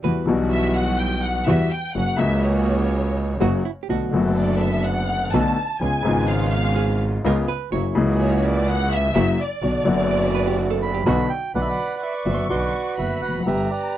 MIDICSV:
0, 0, Header, 1, 7, 480
1, 0, Start_track
1, 0, Key_signature, 2, "minor"
1, 0, Tempo, 479616
1, 29, Time_signature, 4, 2, 24, 8
1, 13987, End_track
2, 0, Start_track
2, 0, Title_t, "Violin section"
2, 0, Program_c, 0, 48
2, 512, Note_on_c, 0, 76, 97
2, 734, Note_off_c, 0, 76, 0
2, 749, Note_on_c, 0, 78, 102
2, 988, Note_off_c, 0, 78, 0
2, 988, Note_on_c, 0, 79, 106
2, 1227, Note_off_c, 0, 79, 0
2, 1228, Note_on_c, 0, 78, 102
2, 1463, Note_on_c, 0, 76, 93
2, 1467, Note_off_c, 0, 78, 0
2, 1697, Note_on_c, 0, 79, 101
2, 1705, Note_off_c, 0, 76, 0
2, 1941, Note_on_c, 0, 78, 107
2, 1942, Note_off_c, 0, 79, 0
2, 2167, Note_off_c, 0, 78, 0
2, 2181, Note_on_c, 0, 76, 97
2, 2425, Note_off_c, 0, 76, 0
2, 2425, Note_on_c, 0, 73, 85
2, 3635, Note_off_c, 0, 73, 0
2, 4383, Note_on_c, 0, 74, 79
2, 4598, Note_off_c, 0, 74, 0
2, 4599, Note_on_c, 0, 76, 88
2, 4843, Note_off_c, 0, 76, 0
2, 4847, Note_on_c, 0, 78, 100
2, 5306, Note_on_c, 0, 81, 101
2, 5328, Note_off_c, 0, 78, 0
2, 5797, Note_off_c, 0, 81, 0
2, 5797, Note_on_c, 0, 80, 102
2, 6247, Note_off_c, 0, 80, 0
2, 6277, Note_on_c, 0, 77, 90
2, 6501, Note_off_c, 0, 77, 0
2, 6513, Note_on_c, 0, 77, 96
2, 6965, Note_off_c, 0, 77, 0
2, 8201, Note_on_c, 0, 73, 87
2, 8421, Note_off_c, 0, 73, 0
2, 8455, Note_on_c, 0, 74, 101
2, 8683, Note_off_c, 0, 74, 0
2, 8694, Note_on_c, 0, 78, 116
2, 8921, Note_off_c, 0, 78, 0
2, 8938, Note_on_c, 0, 76, 118
2, 9400, Note_off_c, 0, 76, 0
2, 9418, Note_on_c, 0, 74, 101
2, 11082, Note_off_c, 0, 74, 0
2, 11557, Note_on_c, 0, 83, 71
2, 12002, Note_off_c, 0, 83, 0
2, 12034, Note_on_c, 0, 85, 79
2, 12955, Note_off_c, 0, 85, 0
2, 12994, Note_on_c, 0, 83, 78
2, 13473, Note_off_c, 0, 83, 0
2, 13475, Note_on_c, 0, 82, 84
2, 13987, Note_off_c, 0, 82, 0
2, 13987, End_track
3, 0, Start_track
3, 0, Title_t, "Bandoneon"
3, 0, Program_c, 1, 23
3, 10832, Note_on_c, 1, 83, 94
3, 11049, Note_off_c, 1, 83, 0
3, 11064, Note_on_c, 1, 83, 111
3, 11305, Note_on_c, 1, 79, 87
3, 11316, Note_off_c, 1, 83, 0
3, 11532, Note_off_c, 1, 79, 0
3, 11560, Note_on_c, 1, 78, 78
3, 11562, Note_on_c, 1, 71, 56
3, 11566, Note_on_c, 1, 74, 61
3, 11621, Note_off_c, 1, 78, 0
3, 11621, Note_on_c, 1, 76, 63
3, 11691, Note_off_c, 1, 76, 0
3, 11711, Note_on_c, 1, 78, 75
3, 11962, Note_off_c, 1, 78, 0
3, 11977, Note_on_c, 1, 78, 49
3, 12035, Note_off_c, 1, 78, 0
3, 12035, Note_on_c, 1, 76, 73
3, 12143, Note_off_c, 1, 76, 0
3, 12261, Note_on_c, 1, 76, 62
3, 12479, Note_off_c, 1, 71, 0
3, 12481, Note_off_c, 1, 74, 0
3, 12490, Note_off_c, 1, 76, 0
3, 12505, Note_on_c, 1, 74, 71
3, 12507, Note_on_c, 1, 71, 51
3, 12512, Note_on_c, 1, 66, 52
3, 12956, Note_off_c, 1, 74, 0
3, 13001, Note_on_c, 1, 76, 68
3, 13221, Note_off_c, 1, 76, 0
3, 13228, Note_on_c, 1, 78, 64
3, 13430, Note_off_c, 1, 71, 0
3, 13432, Note_off_c, 1, 66, 0
3, 13477, Note_off_c, 1, 78, 0
3, 13478, Note_on_c, 1, 71, 52
3, 13478, Note_on_c, 1, 76, 71
3, 13480, Note_on_c, 1, 67, 52
3, 13704, Note_off_c, 1, 71, 0
3, 13707, Note_off_c, 1, 67, 0
3, 13717, Note_on_c, 1, 74, 63
3, 13719, Note_on_c, 1, 71, 49
3, 13722, Note_off_c, 1, 76, 0
3, 13722, Note_on_c, 1, 67, 49
3, 13987, Note_off_c, 1, 67, 0
3, 13987, Note_off_c, 1, 71, 0
3, 13987, Note_off_c, 1, 74, 0
3, 13987, End_track
4, 0, Start_track
4, 0, Title_t, "Hollow-body jazz guitar"
4, 0, Program_c, 2, 26
4, 40, Note_on_c, 2, 71, 95
4, 369, Note_off_c, 2, 71, 0
4, 3416, Note_on_c, 2, 66, 107
4, 3651, Note_off_c, 2, 66, 0
4, 3655, Note_on_c, 2, 64, 84
4, 3705, Note_off_c, 2, 64, 0
4, 3832, Note_on_c, 2, 67, 65
4, 3892, Note_off_c, 2, 67, 0
4, 3903, Note_on_c, 2, 66, 95
4, 4231, Note_off_c, 2, 66, 0
4, 6765, Note_on_c, 2, 68, 90
4, 7259, Note_off_c, 2, 68, 0
4, 7267, Note_on_c, 2, 70, 101
4, 7485, Note_off_c, 2, 70, 0
4, 7489, Note_on_c, 2, 71, 98
4, 7723, Note_off_c, 2, 71, 0
4, 7727, Note_on_c, 2, 73, 101
4, 8056, Note_off_c, 2, 73, 0
4, 10118, Note_on_c, 2, 74, 105
4, 10350, Note_off_c, 2, 74, 0
4, 10354, Note_on_c, 2, 71, 89
4, 10472, Note_off_c, 2, 71, 0
4, 10481, Note_on_c, 2, 67, 93
4, 10598, Note_off_c, 2, 67, 0
4, 10598, Note_on_c, 2, 66, 95
4, 10710, Note_off_c, 2, 66, 0
4, 10714, Note_on_c, 2, 69, 94
4, 10946, Note_off_c, 2, 69, 0
4, 10950, Note_on_c, 2, 67, 83
4, 11066, Note_off_c, 2, 67, 0
4, 11070, Note_on_c, 2, 66, 80
4, 11519, Note_off_c, 2, 66, 0
4, 13987, End_track
5, 0, Start_track
5, 0, Title_t, "String section"
5, 0, Program_c, 3, 48
5, 33, Note_on_c, 3, 55, 57
5, 35, Note_on_c, 3, 64, 52
5, 37, Note_on_c, 3, 66, 61
5, 232, Note_off_c, 3, 55, 0
5, 233, Note_off_c, 3, 64, 0
5, 235, Note_off_c, 3, 66, 0
5, 276, Note_on_c, 3, 55, 94
5, 277, Note_on_c, 3, 66, 104
5, 281, Note_on_c, 3, 64, 86
5, 1411, Note_off_c, 3, 55, 0
5, 1411, Note_off_c, 3, 66, 0
5, 1413, Note_off_c, 3, 64, 0
5, 1482, Note_on_c, 3, 64, 74
5, 1483, Note_on_c, 3, 55, 86
5, 1483, Note_on_c, 3, 66, 94
5, 1676, Note_off_c, 3, 55, 0
5, 1676, Note_off_c, 3, 64, 0
5, 1676, Note_off_c, 3, 66, 0
5, 1963, Note_on_c, 3, 66, 58
5, 1965, Note_on_c, 3, 58, 53
5, 1966, Note_on_c, 3, 61, 46
5, 2157, Note_off_c, 3, 66, 0
5, 2158, Note_off_c, 3, 58, 0
5, 2159, Note_off_c, 3, 61, 0
5, 2198, Note_on_c, 3, 58, 95
5, 2199, Note_on_c, 3, 61, 78
5, 2202, Note_on_c, 3, 66, 99
5, 3339, Note_off_c, 3, 58, 0
5, 3340, Note_off_c, 3, 61, 0
5, 3341, Note_off_c, 3, 66, 0
5, 3409, Note_on_c, 3, 58, 76
5, 3413, Note_on_c, 3, 61, 72
5, 3413, Note_on_c, 3, 66, 82
5, 3605, Note_off_c, 3, 58, 0
5, 3607, Note_off_c, 3, 66, 0
5, 3608, Note_off_c, 3, 61, 0
5, 3898, Note_on_c, 3, 59, 55
5, 3900, Note_on_c, 3, 62, 49
5, 3902, Note_on_c, 3, 69, 59
5, 4093, Note_off_c, 3, 59, 0
5, 4094, Note_off_c, 3, 62, 0
5, 4095, Note_off_c, 3, 69, 0
5, 4145, Note_on_c, 3, 62, 91
5, 4146, Note_on_c, 3, 59, 89
5, 4147, Note_on_c, 3, 69, 100
5, 5279, Note_off_c, 3, 59, 0
5, 5279, Note_off_c, 3, 62, 0
5, 5280, Note_off_c, 3, 69, 0
5, 5337, Note_on_c, 3, 59, 84
5, 5339, Note_on_c, 3, 62, 74
5, 5340, Note_on_c, 3, 69, 81
5, 5535, Note_off_c, 3, 59, 0
5, 5535, Note_off_c, 3, 62, 0
5, 5536, Note_off_c, 3, 69, 0
5, 5822, Note_on_c, 3, 59, 51
5, 5827, Note_on_c, 3, 61, 49
5, 5831, Note_on_c, 3, 65, 55
5, 6016, Note_off_c, 3, 59, 0
5, 6019, Note_off_c, 3, 61, 0
5, 6021, Note_off_c, 3, 65, 0
5, 6056, Note_on_c, 3, 59, 98
5, 6059, Note_on_c, 3, 61, 79
5, 6062, Note_on_c, 3, 65, 97
5, 7189, Note_off_c, 3, 59, 0
5, 7191, Note_off_c, 3, 61, 0
5, 7192, Note_off_c, 3, 65, 0
5, 7254, Note_on_c, 3, 59, 78
5, 7258, Note_on_c, 3, 61, 74
5, 7263, Note_on_c, 3, 65, 85
5, 7449, Note_off_c, 3, 59, 0
5, 7451, Note_off_c, 3, 61, 0
5, 7454, Note_off_c, 3, 65, 0
5, 7727, Note_on_c, 3, 64, 50
5, 7728, Note_on_c, 3, 66, 55
5, 7730, Note_on_c, 3, 58, 55
5, 7924, Note_off_c, 3, 64, 0
5, 7924, Note_off_c, 3, 66, 0
5, 7925, Note_off_c, 3, 58, 0
5, 7958, Note_on_c, 3, 58, 91
5, 7963, Note_on_c, 3, 64, 92
5, 7968, Note_on_c, 3, 66, 107
5, 9089, Note_off_c, 3, 58, 0
5, 9091, Note_off_c, 3, 64, 0
5, 9093, Note_off_c, 3, 66, 0
5, 9150, Note_on_c, 3, 58, 85
5, 9154, Note_on_c, 3, 66, 93
5, 9157, Note_on_c, 3, 64, 77
5, 9349, Note_off_c, 3, 58, 0
5, 9351, Note_off_c, 3, 66, 0
5, 9352, Note_off_c, 3, 64, 0
5, 9625, Note_on_c, 3, 59, 56
5, 9629, Note_on_c, 3, 62, 49
5, 9633, Note_on_c, 3, 66, 55
5, 9825, Note_off_c, 3, 59, 0
5, 9826, Note_off_c, 3, 62, 0
5, 9828, Note_off_c, 3, 66, 0
5, 9865, Note_on_c, 3, 59, 94
5, 9865, Note_on_c, 3, 62, 87
5, 9866, Note_on_c, 3, 66, 103
5, 11007, Note_off_c, 3, 59, 0
5, 11007, Note_off_c, 3, 62, 0
5, 11008, Note_off_c, 3, 66, 0
5, 11073, Note_on_c, 3, 59, 82
5, 11078, Note_on_c, 3, 62, 73
5, 11079, Note_on_c, 3, 66, 91
5, 11274, Note_off_c, 3, 59, 0
5, 11276, Note_off_c, 3, 62, 0
5, 11277, Note_off_c, 3, 66, 0
5, 13987, End_track
6, 0, Start_track
6, 0, Title_t, "Grand piano"
6, 0, Program_c, 4, 0
6, 45, Note_on_c, 4, 55, 45
6, 46, Note_on_c, 4, 52, 60
6, 47, Note_on_c, 4, 66, 60
6, 48, Note_on_c, 4, 40, 64
6, 48, Note_on_c, 4, 59, 46
6, 238, Note_off_c, 4, 55, 0
6, 239, Note_off_c, 4, 52, 0
6, 239, Note_off_c, 4, 66, 0
6, 240, Note_off_c, 4, 40, 0
6, 240, Note_off_c, 4, 59, 0
6, 258, Note_on_c, 4, 52, 78
6, 270, Note_on_c, 4, 55, 76
6, 272, Note_on_c, 4, 47, 93
6, 281, Note_on_c, 4, 35, 92
6, 284, Note_on_c, 4, 59, 70
6, 295, Note_on_c, 4, 66, 83
6, 1402, Note_off_c, 4, 52, 0
6, 1408, Note_off_c, 4, 55, 0
6, 1409, Note_off_c, 4, 47, 0
6, 1413, Note_off_c, 4, 35, 0
6, 1415, Note_off_c, 4, 59, 0
6, 1420, Note_off_c, 4, 66, 0
6, 1465, Note_on_c, 4, 55, 74
6, 1469, Note_on_c, 4, 52, 92
6, 1469, Note_on_c, 4, 59, 78
6, 1473, Note_on_c, 4, 40, 86
6, 1477, Note_on_c, 4, 66, 85
6, 1667, Note_off_c, 4, 55, 0
6, 1669, Note_off_c, 4, 59, 0
6, 1671, Note_off_c, 4, 52, 0
6, 1672, Note_off_c, 4, 40, 0
6, 1673, Note_off_c, 4, 66, 0
6, 1949, Note_on_c, 4, 49, 52
6, 1950, Note_on_c, 4, 42, 62
6, 1952, Note_on_c, 4, 54, 57
6, 1954, Note_on_c, 4, 66, 55
6, 1957, Note_on_c, 4, 58, 49
6, 2150, Note_off_c, 4, 49, 0
6, 2151, Note_off_c, 4, 42, 0
6, 2153, Note_off_c, 4, 54, 0
6, 2153, Note_off_c, 4, 66, 0
6, 2154, Note_off_c, 4, 58, 0
6, 2169, Note_on_c, 4, 49, 86
6, 2177, Note_on_c, 4, 54, 72
6, 2186, Note_on_c, 4, 37, 91
6, 2190, Note_on_c, 4, 58, 68
6, 2204, Note_on_c, 4, 66, 83
6, 3329, Note_off_c, 4, 54, 0
6, 3333, Note_off_c, 4, 37, 0
6, 3333, Note_off_c, 4, 49, 0
6, 3336, Note_off_c, 4, 58, 0
6, 3343, Note_off_c, 4, 66, 0
6, 3408, Note_on_c, 4, 49, 75
6, 3409, Note_on_c, 4, 54, 93
6, 3410, Note_on_c, 4, 42, 86
6, 3413, Note_on_c, 4, 66, 82
6, 3415, Note_on_c, 4, 58, 67
6, 3605, Note_off_c, 4, 49, 0
6, 3606, Note_off_c, 4, 42, 0
6, 3606, Note_off_c, 4, 54, 0
6, 3607, Note_off_c, 4, 66, 0
6, 3609, Note_off_c, 4, 58, 0
6, 3894, Note_on_c, 4, 50, 49
6, 3895, Note_on_c, 4, 35, 57
6, 3899, Note_on_c, 4, 57, 47
6, 3901, Note_on_c, 4, 59, 45
6, 3902, Note_on_c, 4, 47, 54
6, 3905, Note_on_c, 4, 66, 56
6, 4091, Note_off_c, 4, 50, 0
6, 4092, Note_off_c, 4, 35, 0
6, 4094, Note_off_c, 4, 57, 0
6, 4095, Note_off_c, 4, 47, 0
6, 4095, Note_off_c, 4, 59, 0
6, 4097, Note_off_c, 4, 66, 0
6, 4116, Note_on_c, 4, 50, 77
6, 4133, Note_on_c, 4, 57, 73
6, 4141, Note_on_c, 4, 30, 92
6, 4142, Note_on_c, 4, 42, 90
6, 4149, Note_on_c, 4, 59, 71
6, 4160, Note_on_c, 4, 66, 89
6, 5264, Note_off_c, 4, 50, 0
6, 5273, Note_off_c, 4, 57, 0
6, 5277, Note_off_c, 4, 30, 0
6, 5278, Note_off_c, 4, 42, 0
6, 5281, Note_off_c, 4, 59, 0
6, 5286, Note_off_c, 4, 66, 0
6, 5339, Note_on_c, 4, 50, 84
6, 5341, Note_on_c, 4, 57, 77
6, 5341, Note_on_c, 4, 59, 72
6, 5342, Note_on_c, 4, 35, 90
6, 5342, Note_on_c, 4, 47, 88
6, 5342, Note_on_c, 4, 66, 83
6, 5536, Note_off_c, 4, 50, 0
6, 5536, Note_off_c, 4, 57, 0
6, 5536, Note_off_c, 4, 59, 0
6, 5537, Note_off_c, 4, 35, 0
6, 5537, Note_off_c, 4, 47, 0
6, 5537, Note_off_c, 4, 66, 0
6, 5813, Note_on_c, 4, 49, 64
6, 5814, Note_on_c, 4, 56, 46
6, 5817, Note_on_c, 4, 37, 59
6, 5819, Note_on_c, 4, 59, 45
6, 5819, Note_on_c, 4, 65, 57
6, 6012, Note_off_c, 4, 56, 0
6, 6014, Note_off_c, 4, 37, 0
6, 6014, Note_off_c, 4, 49, 0
6, 6015, Note_off_c, 4, 59, 0
6, 6015, Note_off_c, 4, 65, 0
6, 6029, Note_on_c, 4, 49, 81
6, 6049, Note_on_c, 4, 56, 68
6, 6053, Note_on_c, 4, 32, 92
6, 6053, Note_on_c, 4, 44, 99
6, 6064, Note_on_c, 4, 59, 70
6, 6073, Note_on_c, 4, 65, 87
6, 7176, Note_off_c, 4, 49, 0
6, 7186, Note_off_c, 4, 56, 0
6, 7188, Note_off_c, 4, 32, 0
6, 7188, Note_off_c, 4, 44, 0
6, 7193, Note_off_c, 4, 59, 0
6, 7198, Note_off_c, 4, 65, 0
6, 7249, Note_on_c, 4, 56, 75
6, 7250, Note_on_c, 4, 49, 89
6, 7252, Note_on_c, 4, 37, 94
6, 7252, Note_on_c, 4, 59, 75
6, 7258, Note_on_c, 4, 65, 86
6, 7447, Note_off_c, 4, 56, 0
6, 7448, Note_off_c, 4, 37, 0
6, 7448, Note_off_c, 4, 59, 0
6, 7450, Note_off_c, 4, 49, 0
6, 7451, Note_off_c, 4, 65, 0
6, 7727, Note_on_c, 4, 54, 64
6, 7729, Note_on_c, 4, 49, 52
6, 7733, Note_on_c, 4, 42, 62
6, 7734, Note_on_c, 4, 58, 50
6, 7736, Note_on_c, 4, 64, 56
6, 7924, Note_off_c, 4, 49, 0
6, 7926, Note_off_c, 4, 42, 0
6, 7926, Note_off_c, 4, 54, 0
6, 7927, Note_off_c, 4, 58, 0
6, 7928, Note_off_c, 4, 64, 0
6, 7956, Note_on_c, 4, 49, 99
6, 7971, Note_on_c, 4, 54, 76
6, 7975, Note_on_c, 4, 37, 95
6, 7981, Note_on_c, 4, 58, 73
6, 7998, Note_on_c, 4, 64, 89
6, 9095, Note_off_c, 4, 54, 0
6, 9097, Note_off_c, 4, 37, 0
6, 9097, Note_off_c, 4, 49, 0
6, 9100, Note_off_c, 4, 58, 0
6, 9108, Note_off_c, 4, 64, 0
6, 9160, Note_on_c, 4, 49, 84
6, 9163, Note_on_c, 4, 58, 74
6, 9164, Note_on_c, 4, 42, 98
6, 9164, Note_on_c, 4, 64, 92
6, 9166, Note_on_c, 4, 54, 96
6, 9354, Note_off_c, 4, 49, 0
6, 9355, Note_off_c, 4, 58, 0
6, 9356, Note_off_c, 4, 42, 0
6, 9356, Note_off_c, 4, 64, 0
6, 9357, Note_off_c, 4, 54, 0
6, 9628, Note_on_c, 4, 50, 54
6, 9630, Note_on_c, 4, 54, 45
6, 9631, Note_on_c, 4, 47, 64
6, 9635, Note_on_c, 4, 35, 60
6, 9635, Note_on_c, 4, 59, 48
6, 9635, Note_on_c, 4, 66, 58
6, 9826, Note_off_c, 4, 50, 0
6, 9827, Note_off_c, 4, 47, 0
6, 9827, Note_off_c, 4, 54, 0
6, 9829, Note_off_c, 4, 35, 0
6, 9829, Note_off_c, 4, 66, 0
6, 9830, Note_off_c, 4, 59, 0
6, 9849, Note_on_c, 4, 50, 80
6, 9857, Note_on_c, 4, 54, 75
6, 9865, Note_on_c, 4, 42, 93
6, 9869, Note_on_c, 4, 30, 88
6, 9872, Note_on_c, 4, 59, 72
6, 9883, Note_on_c, 4, 66, 85
6, 10999, Note_off_c, 4, 50, 0
6, 11003, Note_off_c, 4, 54, 0
6, 11007, Note_off_c, 4, 42, 0
6, 11009, Note_off_c, 4, 30, 0
6, 11010, Note_off_c, 4, 59, 0
6, 11016, Note_off_c, 4, 66, 0
6, 11071, Note_on_c, 4, 35, 91
6, 11071, Note_on_c, 4, 50, 77
6, 11074, Note_on_c, 4, 54, 70
6, 11075, Note_on_c, 4, 66, 87
6, 11077, Note_on_c, 4, 47, 94
6, 11077, Note_on_c, 4, 59, 68
6, 11273, Note_off_c, 4, 35, 0
6, 11273, Note_off_c, 4, 50, 0
6, 11275, Note_off_c, 4, 54, 0
6, 11275, Note_off_c, 4, 66, 0
6, 11276, Note_off_c, 4, 47, 0
6, 11276, Note_off_c, 4, 59, 0
6, 11560, Note_on_c, 4, 50, 52
6, 11561, Note_on_c, 4, 35, 68
6, 11564, Note_on_c, 4, 59, 51
6, 11565, Note_on_c, 4, 54, 51
6, 11566, Note_on_c, 4, 47, 67
6, 11568, Note_on_c, 4, 66, 62
6, 11757, Note_off_c, 4, 50, 0
6, 11758, Note_off_c, 4, 35, 0
6, 11759, Note_off_c, 4, 59, 0
6, 11760, Note_off_c, 4, 47, 0
6, 11760, Note_off_c, 4, 54, 0
6, 11761, Note_off_c, 4, 66, 0
6, 12263, Note_on_c, 4, 50, 55
6, 12266, Note_on_c, 4, 54, 49
6, 12268, Note_on_c, 4, 42, 71
6, 12268, Note_on_c, 4, 59, 52
6, 12270, Note_on_c, 4, 30, 61
6, 12270, Note_on_c, 4, 66, 65
6, 12470, Note_off_c, 4, 50, 0
6, 12472, Note_off_c, 4, 54, 0
6, 12472, Note_off_c, 4, 59, 0
6, 12473, Note_off_c, 4, 42, 0
6, 12474, Note_off_c, 4, 30, 0
6, 12474, Note_off_c, 4, 66, 0
6, 12505, Note_on_c, 4, 47, 62
6, 12506, Note_on_c, 4, 50, 57
6, 12506, Note_on_c, 4, 59, 49
6, 12510, Note_on_c, 4, 54, 48
6, 12512, Note_on_c, 4, 35, 66
6, 12513, Note_on_c, 4, 66, 60
6, 12711, Note_off_c, 4, 47, 0
6, 12711, Note_off_c, 4, 50, 0
6, 12712, Note_off_c, 4, 59, 0
6, 12713, Note_off_c, 4, 54, 0
6, 12714, Note_off_c, 4, 35, 0
6, 12715, Note_off_c, 4, 66, 0
6, 12988, Note_on_c, 4, 50, 39
6, 12989, Note_on_c, 4, 30, 48
6, 12990, Note_on_c, 4, 59, 36
6, 12991, Note_on_c, 4, 66, 44
6, 12993, Note_on_c, 4, 42, 43
6, 12994, Note_on_c, 4, 54, 36
6, 13192, Note_off_c, 4, 50, 0
6, 13193, Note_off_c, 4, 30, 0
6, 13193, Note_off_c, 4, 59, 0
6, 13194, Note_off_c, 4, 66, 0
6, 13195, Note_off_c, 4, 42, 0
6, 13195, Note_off_c, 4, 54, 0
6, 13295, Note_on_c, 4, 40, 43
6, 13354, Note_off_c, 4, 40, 0
6, 13358, Note_on_c, 4, 41, 53
6, 13410, Note_on_c, 4, 42, 63
6, 13415, Note_off_c, 4, 41, 0
6, 13471, Note_off_c, 4, 42, 0
6, 13473, Note_on_c, 4, 50, 59
6, 13476, Note_on_c, 4, 31, 70
6, 13476, Note_on_c, 4, 43, 65
6, 13477, Note_on_c, 4, 59, 54
6, 13479, Note_on_c, 4, 55, 53
6, 13481, Note_on_c, 4, 67, 61
6, 13674, Note_off_c, 4, 50, 0
6, 13675, Note_off_c, 4, 31, 0
6, 13675, Note_off_c, 4, 43, 0
6, 13676, Note_off_c, 4, 59, 0
6, 13677, Note_off_c, 4, 55, 0
6, 13678, Note_off_c, 4, 67, 0
6, 13987, End_track
7, 0, Start_track
7, 0, Title_t, "Double bass"
7, 0, Program_c, 5, 43
7, 32, Note_on_c, 5, 40, 62
7, 232, Note_off_c, 5, 40, 0
7, 276, Note_on_c, 5, 35, 107
7, 1411, Note_off_c, 5, 35, 0
7, 1469, Note_on_c, 5, 40, 98
7, 1670, Note_off_c, 5, 40, 0
7, 1963, Note_on_c, 5, 30, 65
7, 2157, Note_off_c, 5, 30, 0
7, 2192, Note_on_c, 5, 37, 117
7, 3337, Note_off_c, 5, 37, 0
7, 3404, Note_on_c, 5, 30, 101
7, 3603, Note_off_c, 5, 30, 0
7, 3896, Note_on_c, 5, 35, 61
7, 4092, Note_off_c, 5, 35, 0
7, 4132, Note_on_c, 5, 30, 106
7, 5272, Note_off_c, 5, 30, 0
7, 5331, Note_on_c, 5, 35, 97
7, 5532, Note_off_c, 5, 35, 0
7, 5808, Note_on_c, 5, 37, 62
7, 6010, Note_off_c, 5, 37, 0
7, 6057, Note_on_c, 5, 32, 114
7, 7190, Note_off_c, 5, 32, 0
7, 7249, Note_on_c, 5, 37, 95
7, 7447, Note_off_c, 5, 37, 0
7, 7724, Note_on_c, 5, 30, 65
7, 7922, Note_off_c, 5, 30, 0
7, 7957, Note_on_c, 5, 37, 115
7, 9088, Note_off_c, 5, 37, 0
7, 9152, Note_on_c, 5, 30, 98
7, 9350, Note_off_c, 5, 30, 0
7, 9627, Note_on_c, 5, 35, 66
7, 9826, Note_off_c, 5, 35, 0
7, 9854, Note_on_c, 5, 30, 113
7, 11002, Note_off_c, 5, 30, 0
7, 11072, Note_on_c, 5, 35, 107
7, 11274, Note_off_c, 5, 35, 0
7, 11556, Note_on_c, 5, 35, 70
7, 11755, Note_off_c, 5, 35, 0
7, 12269, Note_on_c, 5, 30, 71
7, 12473, Note_off_c, 5, 30, 0
7, 12511, Note_on_c, 5, 35, 78
7, 12714, Note_off_c, 5, 35, 0
7, 12996, Note_on_c, 5, 30, 51
7, 13196, Note_off_c, 5, 30, 0
7, 13234, Note_on_c, 5, 29, 41
7, 13468, Note_off_c, 5, 29, 0
7, 13474, Note_on_c, 5, 31, 67
7, 13674, Note_off_c, 5, 31, 0
7, 13987, End_track
0, 0, End_of_file